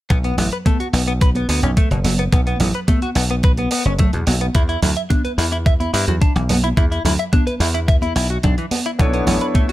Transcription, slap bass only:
0.10 B1
0.38 A1
0.93 B1
1.49 D2
1.63 B1
1.91 F#1
2.32 B1
2.60 A1
3.16 B1
3.85 F#1
4.13 E2
4.27 B1
4.55 E2
4.83 D2
5.38 E2
5.94 G2
6.08 E2
6.36 B1
6.77 E2
7.05 D2
7.60 E2
8.16 B1
8.44 B1
8.99 B1
9.27 A1

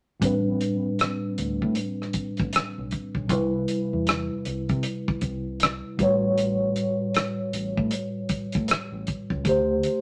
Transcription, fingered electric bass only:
0.22 A1
1.38 D2
1.62 A2
2.14 muted fingered electric bass stroke
2.40 A1
2.54 muted fingered electric bass stroke
2.78 B1
3.15 B1
3.30 C2
3.93 E2
4.46 C2
4.70 C3
5.09 muted fingered electric bass stroke
5.22 C2
5.99 A1
7.53 A1
7.78 A2
8.30 muted fingered electric bass stroke
8.55 A2
8.69 muted fingered electric bass stroke
8.92 A1
9.31 C#2
9.45 D2

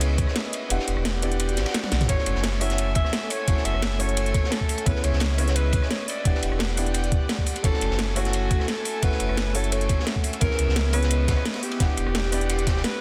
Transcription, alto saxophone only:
2.09 C#5
2.61 E5
2.96 E5
3.31 C#5
3.65 E5
4.00 C#5
4.52 A4
4.86 B4
5.04 C#5
5.56 B4
5.91 C#5
6.08 D5
7.64 A4
8.16 F#4
8.68 A4
9.03 B4
9.55 A4
9.72 C#5
10.41 A#4
10.94 B4
11.63 G4
12.84 B4

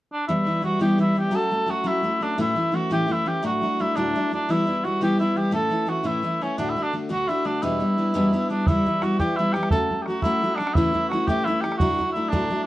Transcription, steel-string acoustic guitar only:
0.29 E3 G3 B3 E4
0.46 E3 G3 B3 E4
0.62 E3 G3 B3 E4
0.80 E3 G3 B3 E4
0.98 E3 G3 B3 E4
1.15 E3 G3 B3 E4
1.31 F#3 A3 C#4 F#4
1.51 F#3 A3 C#4 F#4
1.66 F#3 A3 C#4 F#4
1.84 F#3 A3 C#4 F#4
2.03 F#3 A3 F#4
2.20 F#3 A3 C#4 F#4
2.38 A2 E3 A3 C#4 E4
2.55 E3 A3 C#4 E4
2.72 E3 A3 C#4 E4
2.90 A2 E3 A3 C#4 E4
3.07 E3 A3 C#4 E4
3.25 E3 A3 C#4 E4
3.43 D2 A2 F#3 A3 D4 E4
3.61 F#3 A3 D4 E4
3.79 F#3 A3 D4 E4
3.96 D2 A2 F#3 A3 D4 E4
4.16 F#3 A3 D4 E4
4.31 F#3 A3 E4
4.49 E3 G3 B3 E4
4.66 E3 G3 B3 E4
4.84 E3 G3 B3 E4
5.01 E3 G3 B3 E4
5.19 E3 G3 B3 E4
5.36 E3 G3 B3 E4
5.51 A2 E3 A3 C#4 E4
5.70 E3 A3 C#4 E4
5.86 E3 A3 C#4 E4
6.03 A2 E3 A3 C#4 E4
6.22 E3 A3 C#4 E4
6.41 E3 A3 C#4 E4
6.58 D2 A2 D3 A3 D4 F#4
6.76 D3 A3 D4 F#4
6.93 D3 A3 D4 F#4
7.09 D2 A2 D3 A3 D4 F#4
7.28 D3 A3 D4 F#4
7.45 D3 A3 D4 F#4
7.62 E2 B2 G3 B3 D4 E4
7.80 G3 B3 D4 E4
7.98 G3 B3 D4 E4
8.14 E2 B2 G3 B3 D4 E4
8.32 G3 B3 D4 E4
8.50 G3 B3 D4 E4
8.68 E3 G3 B3 E4
8.86 E3 G3 B3 E4
9.02 E3 G3 B3 E4
9.20 E3 G3 B3 E4
9.39 E3 G3 B3 E4
9.55 E3 G3 B3 E4
9.72 F#3 A3 C#4 F#4
9.90 F#3 A3 C#4 F#4
10.07 F#3 A3 C#4 F#4
10.24 F#3 A3 C#4 F#4
10.42 F#3 A3 C#4 F#4
10.59 F#3 A3 C#4 F#4
10.77 A2 E3 A3 C#4 E4
10.93 E3 A3 C#4 E4
11.12 E3 A3 C#4 E4
11.28 A2 E3 A3 C#4 E4
11.47 E3 A3 C#4 E4
11.64 E3 A3 C#4 E4
11.80 D2 A2 F#3 A3 D4 E4
11.98 F#3 A3 D4 E4
12.16 F#3 A3 D4 E4
12.32 D2 A2 F#3 A3 D4 E4
12.50 F#3 A3 D4 E4

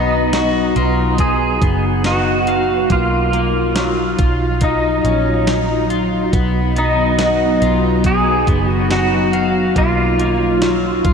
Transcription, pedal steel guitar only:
Already playing: D#4
1.20 G#4
2.06 F#4
2.92 F4
4.63 D#4
6.78 D#4
8.06 G#4
8.69 F#4
8.92 F#4
9.78 F4

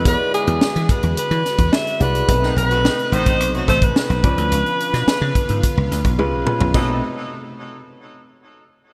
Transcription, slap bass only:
0.05 E2
0.47 E2
0.62 muted slap bass stroke
0.76 E3
1.03 E2
1.17 muted slap bass stroke
1.31 E3
1.58 E2
2.00 C2
2.29 B1
2.56 B1
3.12 A1
3.40 B1
3.68 A1
4.10 B1
4.24 C#2
4.38 D2
4.52 C#2
4.94 B2
5.07 muted slap bass stroke
5.21 C#3
5.50 G#2
5.77 C#2
5.91 D2
6.05 B1
6.19 C#2
6.33 B1
6.61 B1
6.74 B1

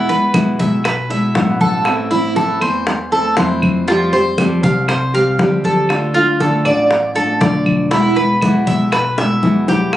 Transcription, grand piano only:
Already playing: E2
0.59 B1
1.35 A1
2.61 E2
3.37 F2
4.63 C2
5.39 D2
6.65 A1
7.40 E1
8.67 B1
9.43 E2

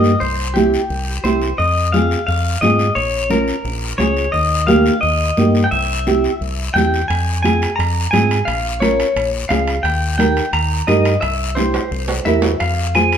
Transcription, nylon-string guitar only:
Already playing: A#3 D#4 G4
0.55 C4 E4 G4
1.25 C4 E4 G4
1.93 C4 F4 G#4
2.62 C4 F4 G#4
3.30 C#4 F4 A#4
3.99 C#4 F4 G#4
4.67 A#3 D#4 G4
5.37 A#3 D#4 G4
6.07 C4 E4 G4
6.76 C4 E4 G4
7.44 C4 F4 G#4
8.13 C4 F4 G#4
8.81 C#4 F4 A#4
9.50 C#4 F4 G#4
10.19 D#4 G4 A#4
10.88 D#4 G4 A#4
11.57 E4 G4 C5
12.26 E4 G4 A#4
12.95 F4 G#4 C5

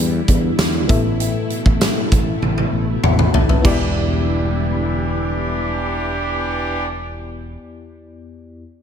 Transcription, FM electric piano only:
Already playing: E3 B3 E4 G4 D5
0.88 A2 B3 E4 A4 E5
3.03 F#5 B5
3.34 E5 A5
3.49 B4 E5
3.62 E2 B3 E4 G4
3.67 D5

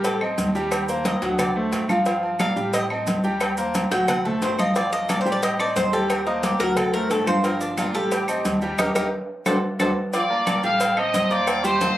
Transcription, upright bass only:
Already playing: A1
0.38 D#2
1.22 D2
1.73 G1
2.56 A1
3.07 D#2
3.91 D2
4.41 G1
5.26 A1
5.76 D#2
6.60 D2
7.10 G1
7.94 A1
8.45 D#2
8.79 D#2
8.96 D#2
9.46 D2
9.80 D2
10.64 A1
11.14 D#2

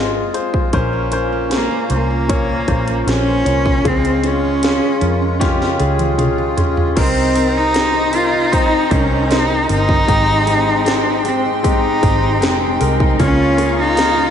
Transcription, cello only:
1.54 A#3
1.93 A#3
3.09 C#4
3.88 C4
4.27 C#4
6.99 C4
7.57 D#4
8.15 F4
8.54 D#4
8.93 C#4
9.33 D#4
9.72 D#4
11.28 C4
11.66 D#4
13.22 C#4
13.80 D#4

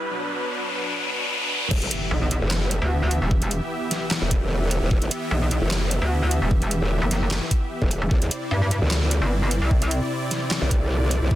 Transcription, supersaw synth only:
Already playing: B4
0.11 B2 F#3 D4
1.71 E3 B3 G4 E5
8.11 C3 C4 E4 D5

